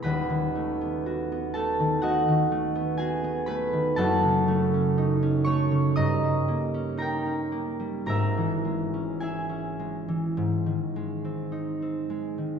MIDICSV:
0, 0, Header, 1, 2, 480
1, 0, Start_track
1, 0, Tempo, 983607
1, 25, Time_signature, 4, 2, 24, 8
1, 2904, Tempo, 1018676
1, 3384, Tempo, 1134216
1, 5763, End_track
2, 0, Start_track
2, 0, Title_t, "Harp"
2, 0, Program_c, 0, 46
2, 0, Note_on_c, 0, 59, 48
2, 12, Note_on_c, 0, 83, 89
2, 16, Note_on_c, 0, 27, 58
2, 17, Note_on_c, 0, 71, 62
2, 19, Note_on_c, 0, 78, 72
2, 23, Note_on_c, 0, 39, 63
2, 144, Note_on_c, 0, 51, 51
2, 270, Note_on_c, 0, 57, 47
2, 391, Note_off_c, 0, 59, 0
2, 397, Note_on_c, 0, 59, 50
2, 518, Note_on_c, 0, 66, 54
2, 638, Note_off_c, 0, 59, 0
2, 644, Note_on_c, 0, 59, 52
2, 750, Note_on_c, 0, 81, 102
2, 755, Note_on_c, 0, 69, 76
2, 757, Note_off_c, 0, 57, 0
2, 763, Note_on_c, 0, 57, 55
2, 872, Note_off_c, 0, 51, 0
2, 877, Note_on_c, 0, 51, 54
2, 978, Note_off_c, 0, 78, 0
2, 984, Note_off_c, 0, 66, 0
2, 984, Note_on_c, 0, 78, 93
2, 987, Note_off_c, 0, 57, 0
2, 988, Note_on_c, 0, 66, 76
2, 991, Note_on_c, 0, 75, 74
2, 993, Note_on_c, 0, 57, 61
2, 1108, Note_off_c, 0, 51, 0
2, 1114, Note_on_c, 0, 51, 54
2, 1222, Note_off_c, 0, 57, 0
2, 1228, Note_on_c, 0, 57, 56
2, 1338, Note_off_c, 0, 59, 0
2, 1344, Note_on_c, 0, 59, 56
2, 1452, Note_on_c, 0, 80, 98
2, 1455, Note_off_c, 0, 66, 0
2, 1459, Note_on_c, 0, 68, 66
2, 1461, Note_on_c, 0, 66, 51
2, 1575, Note_off_c, 0, 59, 0
2, 1581, Note_on_c, 0, 59, 61
2, 1684, Note_off_c, 0, 83, 0
2, 1690, Note_off_c, 0, 71, 0
2, 1690, Note_on_c, 0, 83, 96
2, 1693, Note_off_c, 0, 57, 0
2, 1696, Note_on_c, 0, 71, 81
2, 1699, Note_on_c, 0, 57, 57
2, 1814, Note_off_c, 0, 51, 0
2, 1820, Note_on_c, 0, 51, 58
2, 1919, Note_off_c, 0, 27, 0
2, 1927, Note_off_c, 0, 39, 0
2, 1928, Note_off_c, 0, 81, 0
2, 1934, Note_off_c, 0, 78, 0
2, 1934, Note_on_c, 0, 81, 112
2, 1935, Note_off_c, 0, 69, 0
2, 1937, Note_on_c, 0, 30, 68
2, 1941, Note_on_c, 0, 69, 84
2, 1941, Note_on_c, 0, 78, 75
2, 1944, Note_on_c, 0, 42, 78
2, 1959, Note_off_c, 0, 83, 0
2, 1960, Note_off_c, 0, 80, 0
2, 1962, Note_off_c, 0, 71, 0
2, 1964, Note_off_c, 0, 51, 0
2, 1964, Note_off_c, 0, 68, 0
2, 1965, Note_off_c, 0, 59, 0
2, 2065, Note_on_c, 0, 49, 58
2, 2180, Note_off_c, 0, 57, 0
2, 2186, Note_on_c, 0, 57, 64
2, 2313, Note_on_c, 0, 61, 62
2, 2429, Note_on_c, 0, 63, 65
2, 2545, Note_off_c, 0, 61, 0
2, 2551, Note_on_c, 0, 61, 63
2, 2657, Note_on_c, 0, 85, 121
2, 2662, Note_off_c, 0, 57, 0
2, 2665, Note_on_c, 0, 73, 87
2, 2668, Note_on_c, 0, 57, 64
2, 2782, Note_off_c, 0, 49, 0
2, 2788, Note_on_c, 0, 49, 58
2, 2894, Note_off_c, 0, 75, 0
2, 2907, Note_on_c, 0, 87, 116
2, 2910, Note_on_c, 0, 75, 92
2, 2913, Note_on_c, 0, 82, 87
2, 2916, Note_on_c, 0, 43, 76
2, 2919, Note_off_c, 0, 81, 0
2, 2921, Note_off_c, 0, 30, 0
2, 2921, Note_off_c, 0, 78, 0
2, 2922, Note_off_c, 0, 69, 0
2, 2924, Note_off_c, 0, 42, 0
2, 2924, Note_off_c, 0, 66, 0
2, 2927, Note_off_c, 0, 49, 0
2, 2928, Note_off_c, 0, 57, 0
2, 3037, Note_on_c, 0, 55, 54
2, 3154, Note_on_c, 0, 58, 58
2, 3271, Note_off_c, 0, 61, 0
2, 3277, Note_on_c, 0, 61, 59
2, 3384, Note_off_c, 0, 63, 0
2, 3385, Note_off_c, 0, 82, 0
2, 3386, Note_on_c, 0, 63, 58
2, 3390, Note_on_c, 0, 82, 86
2, 3396, Note_on_c, 0, 70, 65
2, 3405, Note_on_c, 0, 79, 72
2, 3500, Note_off_c, 0, 61, 0
2, 3505, Note_on_c, 0, 61, 48
2, 3611, Note_off_c, 0, 58, 0
2, 3616, Note_on_c, 0, 58, 52
2, 3729, Note_off_c, 0, 55, 0
2, 3734, Note_on_c, 0, 55, 52
2, 3843, Note_off_c, 0, 82, 0
2, 3846, Note_on_c, 0, 32, 54
2, 3848, Note_off_c, 0, 70, 0
2, 3849, Note_on_c, 0, 82, 99
2, 3853, Note_on_c, 0, 70, 74
2, 3857, Note_on_c, 0, 44, 67
2, 3860, Note_on_c, 0, 76, 75
2, 3875, Note_off_c, 0, 87, 0
2, 3876, Note_off_c, 0, 55, 0
2, 3877, Note_off_c, 0, 58, 0
2, 3877, Note_off_c, 0, 75, 0
2, 3879, Note_off_c, 0, 79, 0
2, 3880, Note_off_c, 0, 43, 0
2, 3880, Note_off_c, 0, 63, 0
2, 3978, Note_on_c, 0, 52, 49
2, 4095, Note_on_c, 0, 56, 49
2, 4212, Note_off_c, 0, 61, 0
2, 4217, Note_on_c, 0, 61, 52
2, 4330, Note_off_c, 0, 76, 0
2, 4330, Note_on_c, 0, 64, 49
2, 4330, Note_on_c, 0, 80, 67
2, 4335, Note_on_c, 0, 68, 51
2, 4341, Note_on_c, 0, 76, 53
2, 4389, Note_off_c, 0, 85, 0
2, 4396, Note_off_c, 0, 73, 0
2, 4447, Note_off_c, 0, 61, 0
2, 4452, Note_on_c, 0, 61, 52
2, 4575, Note_off_c, 0, 56, 0
2, 4580, Note_on_c, 0, 56, 53
2, 4697, Note_off_c, 0, 52, 0
2, 4703, Note_on_c, 0, 52, 51
2, 4819, Note_off_c, 0, 44, 0
2, 4824, Note_on_c, 0, 44, 66
2, 4839, Note_off_c, 0, 82, 0
2, 4840, Note_off_c, 0, 61, 0
2, 4841, Note_off_c, 0, 32, 0
2, 4841, Note_off_c, 0, 70, 0
2, 4842, Note_off_c, 0, 64, 0
2, 4844, Note_off_c, 0, 52, 0
2, 4947, Note_on_c, 0, 51, 47
2, 5068, Note_off_c, 0, 56, 0
2, 5073, Note_on_c, 0, 56, 52
2, 5194, Note_on_c, 0, 60, 51
2, 5309, Note_on_c, 0, 63, 47
2, 5313, Note_off_c, 0, 76, 0
2, 5433, Note_off_c, 0, 60, 0
2, 5438, Note_on_c, 0, 60, 49
2, 5549, Note_off_c, 0, 56, 0
2, 5554, Note_on_c, 0, 56, 51
2, 5668, Note_off_c, 0, 51, 0
2, 5673, Note_on_c, 0, 51, 43
2, 5763, Note_off_c, 0, 44, 0
2, 5763, Note_off_c, 0, 51, 0
2, 5763, Note_off_c, 0, 56, 0
2, 5763, Note_off_c, 0, 60, 0
2, 5763, Note_off_c, 0, 63, 0
2, 5763, Note_off_c, 0, 68, 0
2, 5763, Note_off_c, 0, 80, 0
2, 5763, End_track
0, 0, End_of_file